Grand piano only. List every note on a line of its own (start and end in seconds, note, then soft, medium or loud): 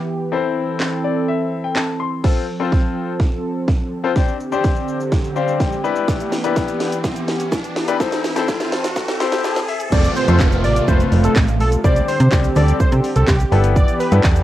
0.32 2.20 C4 medium
0.32 2.20 E4 medium
0.32 2.20 A4 medium
0.32 2.21 C5 medium
1.04 1.26 D5 medium
1.28 1.62 E5 medium
1.64 1.75 G5 medium
1.76 1.98 A5 medium
2.00 2.22 C6 medium
2.24 2.43 C4 medium
2.24 2.43 F4 medium
2.24 2.43 A4 medium
2.24 2.43 C5 medium
2.60 3.11 C4 medium
2.60 3.11 F4 medium
2.60 3.11 A4 medium
2.60 3.11 C5 medium
4.04 4.10 C4 medium
4.04 4.11 F4 medium
4.04 4.11 A4 medium
4.04 4.11 C5 medium
4.16 4.35 C4 medium
4.16 4.35 D4 medium
4.16 4.35 G4 medium
4.16 4.35 C5 medium
4.52 4.97 C4 medium
4.52 4.97 D4 medium
4.52 4.97 G4 medium
4.52 4.97 C5 medium
5.36 5.74 C4 medium
5.36 5.74 D4 medium
5.36 5.74 G4 medium
5.36 5.74 C5 medium
5.36 5.58 F5 medium
5.60 5.82 G5 medium
5.84 6.32 D4 medium
5.84 6.32 E4 medium
5.84 6.32 G4 medium
5.84 6.32 B4 loud
5.84 6.06 B5 medium
6.44 6.95 D4 medium
6.44 6.95 E4 medium
6.44 6.95 G4 medium
6.44 6.95 B4 medium
7.88 7.94 D4 medium
7.88 7.94 E4 medium
7.88 7.95 G4 medium
7.88 7.95 B4 medium
8.00 8.19 C4 medium
8.00 8.19 E4 medium
8.00 8.19 A4 medium
8.00 8.19 C5 loud
8.36 8.81 C4 medium
8.36 8.81 E4 medium
8.36 8.81 A4 medium
8.36 8.81 C5 loud
9.20 9.58 C4 medium
9.20 9.58 E4 medium
9.20 9.58 A4 medium
9.20 9.58 C5 loud
9.44 9.66 A5 medium
9.68 9.91 E5 medium
9.92 10.11 A3 medium
9.92 10.11 C4 medium
9.92 10.11 F4 medium
9.92 10.11 A4 medium
9.92 10.11 C5 medium
10.28 10.60 A3 medium
10.28 10.60 C4 medium
10.28 10.60 F4 medium
10.28 10.60 A4 medium
10.28 10.60 C5 medium
10.88 11.39 A3 medium
10.88 11.39 C4 medium
10.88 11.39 F4 medium
10.88 11.39 A4 medium
10.88 11.39 B4 medium
11.84 12.10 G3 medium
11.84 12.10 C4 medium
11.84 12.10 D4 medium
11.84 12.10 G4 medium
11.84 12.10 C5 medium
12.32 12.45 G3 medium
12.32 12.45 C4 medium
12.32 12.45 D4 medium
12.32 12.45 G4 medium
12.32 12.45 C5 medium
12.56 13.07 G3 medium
12.56 13.07 C4 medium
12.56 13.07 D4 medium
12.56 13.07 G4 medium
12.56 13.07 A4 medium
13.52 14.00 B3 medium
13.52 14.00 D4 medium
13.52 14.00 E4 medium
13.52 14.00 G4 medium
13.52 14.00 B4 medium
14.12 14.44 B3 medium
14.12 14.44 D4 medium
14.12 14.44 E4 medium
14.12 14.44 G4 medium
14.12 14.44 A4 medium